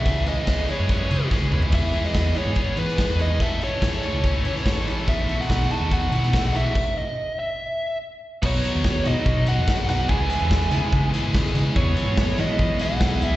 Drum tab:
CC |----------------|x---------------|----------------|----------------|
HH |x-x-x-x-x-x-----|x-x-x-x-x-x-x-x-|x-x-x-x-x-x-x-x-|x-x-x-x-x-x-x-x-|
SD |----o-------o---|---oo------oo---|----o------oo---|---oo------oo---|
T2 |--------------o-|----------------|----------------|----------------|
FT |---------------o|----------------|----------------|----------------|
BD |o---o---o---o---|o---o---o---o---|o---o---o---o---|o---o---o---o---|

CC |x---------------|x---------------|----------------|----------------|
HH |----------------|--x---x---x---x-|--x---x---x---x-|--x---x---x---x-|
SD |----------------|----o-------o-o-|----o-------o---|----o-------o---|
T2 |----------------|----------------|----------------|----------------|
FT |----------------|----------------|----------------|----------------|
BD |o---------------|o---o---o---o---|o---o---o---o---|o---o---o---o---|